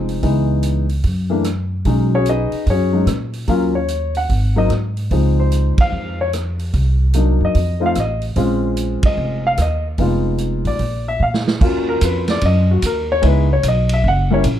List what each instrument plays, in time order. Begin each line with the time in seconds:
Already playing: upright bass F1, grand piano F3 G#3 C4 D#4
0.09 open hi-hat
0.22 upright bass C#2, grand piano E3 G#3 B3 D#4, kick, open hi-hat
0.63 closed hi-hat
0.89 open hi-hat
1.04 upright bass F#2, kick, open hi-hat
1.30 grand piano E3 A3 A#3 D4
1.44 cross-stick, closed hi-hat
1.85 upright bass B1, grand piano F#3 G#3 C#4 D#4, kick, open hi-hat
2.15 grand piano C#4 F#4 G#4 C#5
2.26 grand piano D#4 G#4 B4 D#5, closed hi-hat
2.52 muted upright bass stroke, open hi-hat
2.66 upright bass F#2, grand piano C#4 F#4 G#4 C#5, kick, open hi-hat
2.92 grand piano F#3 G#3 C#4 D#4
3.07 upright bass A#2, cross-stick, closed hi-hat
3.33 open hi-hat
3.48 upright bass D#2, grand piano F#3 A#3 C#4 F4, kick, open hi-hat
3.75 grand piano C#5
3.88 closed hi-hat
4.15 grand piano F#5, open hi-hat
4.29 upright bass G#1, kick, open hi-hat
4.56 grand piano F#3 A#3 C4 D#4 D#5
4.70 upright bass G#2, cross-stick, closed hi-hat
4.97 open hi-hat
5.11 upright bass C#2, grand piano F3 G#3 C4 D#4, kick, open hi-hat
5.40 grand piano C5
5.52 closed hi-hat
5.78 grand piano F5, muted upright bass stroke, kick, ride
5.92 upright bass F2
6.21 grand piano C#5
6.33 cross-stick, closed hi-hat
6.59 open hi-hat
6.74 upright bass C2, kick, open hi-hat
7.14 grand piano F#3 A#3 D4 D#4, closed hi-hat
7.40 upright bass F#2
7.45 grand piano D#5
7.55 upright bass F2, kick, open hi-hat
7.80 grand piano A3 C4 D#4 F4
7.86 grand piano F5
7.95 upright bass A1, cross-stick, closed hi-hat
8.00 grand piano D#5
8.22 open hi-hat
8.36 upright bass A#1, grand piano G#3 C4 C#4 F4, kick, open hi-hat
8.77 closed hi-hat
9.03 grand piano D#5, muted upright bass stroke, kick, ride
9.17 upright bass F1
9.47 grand piano F5
9.57 upright bass D#2, cross-stick, closed hi-hat
9.62 grand piano D#5
9.98 upright bass F1, grand piano G#3 B3 D#4 F4, kick, open hi-hat
10.38 closed hi-hat
10.65 upright bass A1, grand piano D5, open hi-hat
10.79 upright bass A#1, kick, open hi-hat
11.08 grand piano E5
11.20 upright bass A#2, grand piano F5
11.34 snare
11.48 snare
11.61 upright bass D#2, grand piano A#3 C#4 F4 F#4, kick, crash
11.89 grand piano A#4
12.01 upright bass F2, grand piano B4, kick, hi-hat pedal, ride
12.28 grand piano D5, snare, ride
12.41 upright bass F#2, kick, ride
12.46 grand piano D#5
12.71 grand piano F#4
12.82 upright bass D#2, grand piano A#4, kick, hi-hat pedal, ride
13.12 grand piano C#5
13.21 upright bass C#2, grand piano G#3 B3 D#4 E4, kick, ride
13.27 grand piano B4
13.53 grand piano C#5
13.63 upright bass B1, kick, hi-hat pedal, ride
13.68 grand piano D#5
13.89 ride
13.94 grand piano E5
14.04 upright bass F#1, kick
14.08 grand piano F#5
14.31 grand piano G3 A#3 C#4 E4 C#5
14.44 upright bass A#1, kick, hi-hat pedal, ride